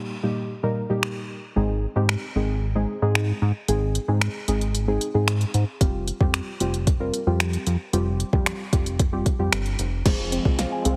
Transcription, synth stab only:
Already playing: A#2 G3 A#3 D#4 G4
0.23 A#2 G3 A#3 D#4 G4
0.63 A#2 G3 A#3 D#4 A#4
0.90 A#2 G3 A#3 D#4 G4
1.56 G#3 C4 D#4 G#4
1.96 G#3 C4 D#4 G4
2.36 G#3 C4 D#4 G#4
2.75 G#3 C4 D#4 G#4
3.02 G#3 C4 D#4 G#4
3.68 G#3 C4 D#4 G#4
4.08 G#3 C4 D#4 G#4
4.48 G#3 C4 D#4 G#4
4.88 G#3 C4 D#4 G#4
5.14 G#3 C4 D#4 G#4
5.81 G3 C4 F4 G4
6.20 G3 C4 F4 G4
6.60 G3 C4 F4 G4
7.00 G3 C4 F4 A#4
7.27 G3 C4 F4 G4
7.93 G3 C4 F4 G4
8.33 G3 C4 F4 G4
8.73 G3 C4 F4 G4
9.12 G3 C4 F4 G4
9.39 G3 C4 F4 G4
10.05 G#3 C4 F4 G#4
10.45 G#3 C4 F4 G#4
10.85 G#3 C4 F4 G#4

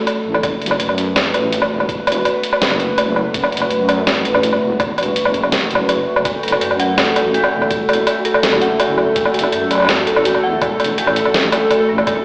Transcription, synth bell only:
6.25 F#4
6.43 A4
6.61 F#4
6.80 F#5
6.98 F#4
7.16 F#4
7.34 F#4
7.53 F#4
7.71 F#4
7.89 F#4
8.07 F#4
8.25 A4
8.43 F#4
8.62 F#5
8.80 F#4
8.98 F#4
9.16 F#4
9.34 F#4
9.53 F#4
9.71 F#4
9.89 F#4
10.07 A4
10.25 F#4
10.43 F#5
10.62 F#4
10.80 F#4
10.98 F#4
11.16 F#4
11.34 F#4
11.52 F#4
11.71 F#4
11.89 A4
12.07 F#4

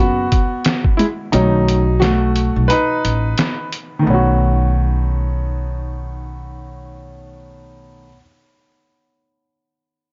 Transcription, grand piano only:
Already playing: B3 F#4
0.97 G#3 E4
1.32 D#3 F#3 A3 C#4 D#4
2.00 A3 F#4
2.68 D#4 B4
3.99 D#3 A3
4.07 B3 C#4
4.14 F#4

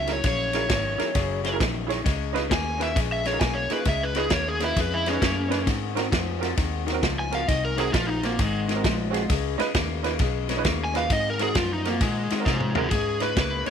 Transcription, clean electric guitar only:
0.09 F#2 D#3
0.24 F#2 C#3
0.53 F#2 C#3
0.69 F#2 D#3
0.98 F#2 D#3
1.15 F#2 C#3
1.44 F#2 C#3
1.60 F#2 D#3
1.89 F#2 D#3
2.04 C#3 G#3
2.35 C#3 G#3
2.50 C#3 A#3
2.80 C#3 A#3
2.95 C#3 G#3
3.26 C#3 G#3
3.41 C#3 A#3
3.71 C#3 A#3
3.86 C#3 G#3
4.15 C#3 G#3
4.30 C#3 A#3
4.60 C#3 A#3
4.77 C#3 G#3
5.07 C#3 G#3
5.21 C#3 A#3
5.50 C#3 A#3
5.66 G#2 D#3
5.96 G#2 D#3
6.11 G#2 F3
6.42 G#2 F3
6.57 G#2 D#3
6.87 G#2 D#3
7.02 G#2 F3
7.32 G#2 F3
7.48 G#2 D#3
7.77 G#2 D#3
7.93 G#2 F3
8.22 G#2 F3
8.39 G#2 D#3
8.69 G#2 D#3
8.84 G#2 F3
9.14 G#2 F3
9.29 C#3 G#3
9.59 C#3 G#3
9.75 C#3 A#3
10.05 C#3 A#3
10.21 C#3 G#3
10.50 C#3 G#3
10.66 C#3 A#3
10.95 C#3 A#3
11.11 G#2 D#3
11.40 G#2 D#3
11.56 G#2 F3
11.85 G#2 F3
12.02 G#2 D#3
12.31 G#2 D#3
12.47 G#2 F3
12.77 G#2 F3
12.93 C#3 G#3
13.21 C#3 G#3
13.36 C#3 A#3

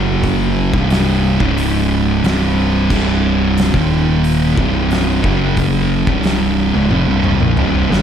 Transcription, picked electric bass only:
Already playing: F#1
0.73 C1
1.40 C#1
2.24 C1
2.90 C1
3.74 D#1
4.58 C1
5.24 F#1
6.07 C1
6.75 C#1
6.91 F1
7.08 C1
7.42 A#1
7.59 C1
7.91 G1

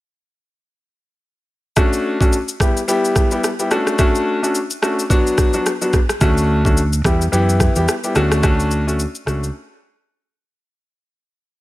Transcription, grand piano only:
1.76 A3 C#4 D4 F#4
2.20 A3 C#4 D4 F#4
2.60 G3 B3 E4 G4
2.88 G3 B3 E4 G4
3.32 G3 B3 E4 G4
3.59 G3 B3 E4 G4
3.71 A3 C#4 D4 F#4
3.98 A3 C#4 D4 F#4
4.42 A3 C#4 D4 F#4
4.82 A3 C#4 D4 F#4
5.10 F#3 B3 D4 F#4
5.54 F#3 B3 D4 F#4
5.81 F#3 B3 D4 F#4
6.21 A3 C#4 D4 F#4
6.65 A3 C#4 D4 F#4
7.04 G3 B3 E4 G4
7.32 E3 B3 E4 G4
7.76 G3 B3 E4 G4
8.04 G3 B3 E4 G4
8.15 A3 C#4 D4 F#4
8.43 A3 C#4 D4 F#4
8.87 A3 C#4 D4 F#4
9.26 A3 C#4 D4 F#4

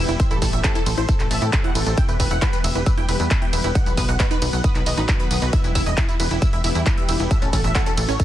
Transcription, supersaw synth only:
0.09 E4
0.20 E5
0.31 A4
0.42 A4
0.53 E5
0.64 A4
0.75 A4
0.87 A4
0.98 C5
1.09 A4
1.20 A4
1.31 E5
1.42 A4
1.64 F#5
1.75 A4
1.86 A4
1.98 G5
2.09 B4
2.20 B4
2.31 F#5
2.42 B4
2.53 B4
2.64 E5
2.75 B4
2.87 B4
2.98 G5
3.09 B4
3.20 B4
3.31 B4
3.42 G5
3.53 B4
3.64 B4
3.75 F#5
3.87 B4
3.98 B4
4.09 F#5
4.20 B4
4.31 B4
4.42 B4
4.53 F#5
4.64 B4
4.75 B4
4.87 D#5
4.98 B4
5.09 B4
5.20 B4
5.31 B4
5.42 B4
5.53 E5
5.64 E4
5.75 E4
5.86 D#5
5.98 E4
6.09 E4
6.20 B4
6.31 E4
6.42 E4
6.53 E5
6.64 E4
6.75 E4
6.86 E4
6.98 E5
7.09 E4
7.20 E4
7.31 E5
7.42 A4
7.53 A4
7.64 E5
7.75 A4
7.86 A4
7.98 A4
8.09 C#5
8.20 A4

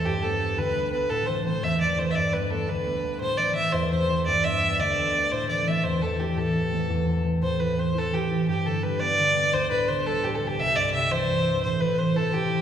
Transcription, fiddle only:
0.05 G4
0.22 A4
0.58 B4
0.92 B4
1.09 A4
1.26 C5
1.44 C5
1.64 E5
1.81 D5
1.98 C5
2.11 E5
2.15 D5
2.33 B4
2.46 A4 B4
2.69 B4
3.21 C5
3.37 D5
3.55 E5
3.72 C5
3.90 C5
4.26 D5
4.44 E5
4.80 D5
5.32 C5
5.49 D5
5.68 E5
5.84 C5
6.02 A4
6.19 G4
6.38 A4
7.42 C5
7.60 B4
7.79 C5
7.98 A4
8.14 G4
8.48 G4
8.66 A4
8.83 B4
9.00 D5
9.53 C5
9.71 B4
9.88 C5
10.06 A4
10.24 G4
10.35 A4
10.47 G4
10.59 E5
10.76 D5
10.94 E5
11.12 C5
11.63 C5
11.80 B4
11.98 C5
12.16 A4
12.33 G4

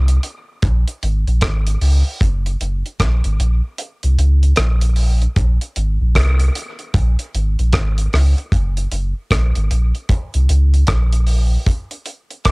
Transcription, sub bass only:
Already playing: C2
0.63 A#1
1.03 G#1
1.27 A#1
1.42 G#1
1.81 C#2
2.21 F#1
2.61 F#1
3.00 A#1
3.25 G#1
3.40 A#1
4.04 C2
4.18 C#2
4.58 A#1
5.37 A#1
5.77 G#1
6.01 A#1
6.16 C2
6.95 A#1
7.35 G#1
7.59 A#1
7.74 G#1
8.14 C#2
8.52 F#1
8.92 F#1
9.31 A#1
9.57 G#1
9.71 A#1
10.35 C2
10.50 C#2
10.88 A#1

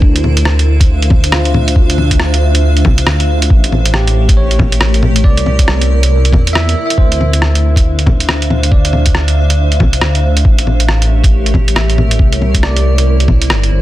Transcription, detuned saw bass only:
0.02 D2
2.20 D2
2.85 C2
3.07 D2
3.50 A1
5.24 C2
5.67 C2
6.33 E2
6.98 D2
9.15 D2
9.80 C2
10.02 D2
10.45 A1
12.19 C2
12.63 C2
13.50 G1
13.72 G1

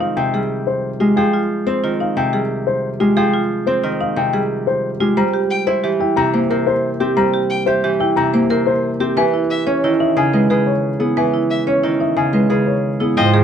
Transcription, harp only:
Already playing: C3 D#3 F3 G3 G#3 C4
0.17 C3
0.34 G3
1.00 G#3
1.17 F3
1.67 C4
1.84 D#3
2.17 C3
2.33 G3
3.00 G#3
3.16 F3
3.67 C4
3.83 D#3
4.16 C3
4.33 G3
5.00 G#3
5.17 G3
5.67 E4
5.84 E3
6.17 C3
6.34 A#3
6.51 C3
7.00 C4
7.17 G3
7.67 G4
7.84 E3
8.17 C3
8.33 A#3
8.50 C3
9.00 C4
9.17 E3
9.67 C#4
9.84 D#3
10.17 C#3
10.33 G#3
10.50 C#3
11.00 B3
11.17 E3
11.67 C#4
11.83 D#3
12.16 C#3
12.33 G#3
12.50 C#3
13.00 B3
13.17 F3
13.34 D#3

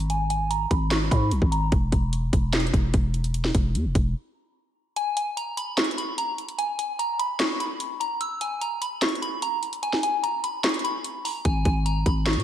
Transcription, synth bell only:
0.10 G#5
0.30 G#5
0.51 A#5
0.71 B5
0.91 C#6
1.11 B5
1.52 A#5
4.96 G#5
5.17 G#5
5.37 A#5
5.57 B5
5.78 C#6
5.98 B5
6.18 A#5
6.58 G#5
6.79 G#5
6.99 A#5
7.19 B5
7.40 C#6
7.60 B5
8.00 A#5
8.21 E6
8.41 G#5
8.61 A#5
8.82 B5
9.02 C#6
9.22 B5
9.42 A#5
9.83 G#5
10.03 G#5
10.23 A#5
10.44 B5
10.64 C#6
10.84 B5
11.25 A#5
11.45 G#5
11.65 G#5
11.86 A#5
12.06 B5
12.26 C#6

